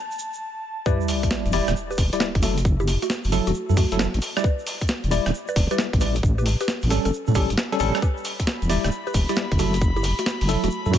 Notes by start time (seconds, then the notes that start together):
Already playing: A5
0.11 shaker
0.19 shaker
0.33 shaker
0.86 G3 E4 G4 B4 D5, kick, sub drop, shaker
1.01 shaker
1.08 open hi-hat, shaker
1.23 kick, closed hi-hat, shaker
1.31 snare, shaker
1.46 E1, closed hi-hat, shaker
1.52 G3 E4 D5, open hi-hat, shaker
1.68 D1, cross-stick, closed hi-hat, shaker
1.76 shaker
1.91 G4 B4, shaker
1.98 E1, kick, open hi-hat, shaker
2.13 G3 E4 G4 D5, closed hi-hat, shaker
2.20 snare, shaker
2.35 F#1, kick, closed hi-hat
2.42 F#3 A3 E4 F#4 A4, open hi-hat, shaker
2.58 closed hi-hat, shaker
2.65 kick, shaker
2.80 E4 G4, shaker
2.87 open hi-hat, shaker
3.02 A3 F#4, closed hi-hat, shaker
3.10 snare, shaker
3.24 F#1, open hi-hat, shaker
3.32 F#3 E4 A4, open hi-hat, shaker
3.47 E1 A3 F#4, closed hi-hat, shaker
3.54 shaker
3.69 F#2 F#3 E4 A4, shaker
3.77 A3 F#4, kick, open hi-hat, shaker
3.92 F#1 F#3 E4 A4, closed hi-hat, shaker
3.99 snare, shaker
4.14 A1, closed hi-hat
4.22 open hi-hat, shaker
4.37 G3 E4 D5, cross-stick, closed hi-hat, shaker
4.44 B4 D5, kick, shaker
4.59 shaker
4.67 open hi-hat, shaker
4.81 kick, closed hi-hat, shaker
4.88 snare, shaker
5.04 E1, closed hi-hat, shaker
5.11 G3 E4 D5, open hi-hat, shaker
5.26 D1, cross-stick, closed hi-hat, shaker
5.34 shaker
5.48 B4 D5, shaker
5.56 E1, kick, open hi-hat, shaker
5.71 G3 E4 G4 B4 D5, closed hi-hat, shaker
5.78 snare, shaker
5.93 A1, kick, closed hi-hat
6.01 G3 E4 G4 B4 D5, open hi-hat, shaker
6.15 closed hi-hat, shaker
6.23 A1, kick, shaker
6.38 G4 B4, shaker
6.46 open hi-hat, shaker
6.61 G4 B4, closed hi-hat, shaker
6.68 snare, shaker
6.82 A1, open hi-hat, shaker
6.90 G3 C#4 A4, open hi-hat, shaker
7.05 G1 C#4 A4, closed hi-hat, shaker
7.13 shaker
7.27 A2 G3 C#4 A4, shaker
7.35 A1 G3 C#4 E4 G4 A4, kick, open hi-hat, shaker
7.50 G1, closed hi-hat, shaker
7.58 snare, shaker
7.72 G3 C#4 A4, closed hi-hat
7.80 A1 G3 C#4 A4, open hi-hat, shaker
7.95 cross-stick, closed hi-hat, shaker
8.02 G4 B4 B5, kick, shaker
8.17 shaker
8.25 open hi-hat, shaker
8.40 kick, closed hi-hat, shaker
8.47 snare, shaker
8.62 E1, closed hi-hat, shaker
8.70 G3 E4 D5, open hi-hat, shaker
8.84 D1, cross-stick, closed hi-hat, shaker
8.91 shaker
9.07 G4 B4, shaker
9.14 E1, kick, open hi-hat, shaker
9.29 G3 E4 G4 D5, closed hi-hat, shaker
9.36 snare, shaker
9.52 F#1, kick, closed hi-hat
9.59 F#3 A3 E4 F#4 A4, open hi-hat, shaker
9.74 closed hi-hat, shaker
9.81 kick, shaker
9.96 E4 G4, shaker
10.03 open hi-hat, shaker
10.18 A3 F#4, closed hi-hat, shaker
10.26 snare, shaker
10.41 F#1, open hi-hat, shaker
10.49 F#3 E4 A4, open hi-hat, shaker
10.64 E1 A3 F#4, closed hi-hat, shaker
10.71 shaker
10.86 F#2 F#3 E4 A4, shaker
10.93 A3 F#4, kick, open hi-hat, shaker